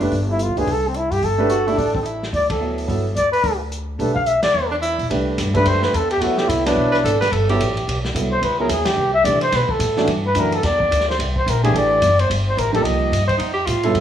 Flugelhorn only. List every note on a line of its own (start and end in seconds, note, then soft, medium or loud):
0.31 0.44 E4 medium
0.43 0.60 F4 medium
0.58 0.73 G#4 medium
0.72 0.89 A4 medium
0.88 0.98 C4 medium
0.97 1.14 E4 medium
1.12 1.26 G4 medium
1.24 2.07 A4 medium
2.35 2.50 D5 medium
2.50 2.76 A4 medium
3.16 3.32 D5 medium
3.32 3.58 B4 medium
4.00 4.14 A4 medium
4.14 4.29 F5 medium
4.27 4.42 E5 medium
4.43 4.69 D5 medium
5.56 5.69 B4 medium
5.67 5.85 C5 medium
5.83 5.97 B4 medium
5.96 6.10 A4 medium
6.11 6.23 G4 medium
6.21 6.39 F#4 medium
6.38 6.50 G4 medium
6.48 6.65 E4 medium
6.67 7.28 D4 medium
8.32 8.46 C5 medium
8.44 8.59 B4 medium
8.60 8.72 A#4 medium
8.70 8.88 G#4 medium
8.86 9.13 G4 medium
9.14 9.26 E5 loud
9.25 9.41 D5 medium
9.42 9.57 C5 loud
9.56 9.72 B4 medium
9.71 10.09 A4 medium
10.26 10.41 B4 medium
10.40 10.57 A#4 medium
10.55 10.66 A4 medium
10.65 11.08 D5 medium
11.08 11.18 C5 medium
11.37 11.51 C5 medium
11.50 11.63 A#4 medium
11.64 11.79 G#4 medium
11.77 12.22 D5 medium
12.20 12.30 C5 medium
12.48 12.60 C5 medium
12.59 12.73 A#4 medium
12.74 12.85 A4 medium
12.83 13.27 D#5 medium
13.28 13.35 C5 loud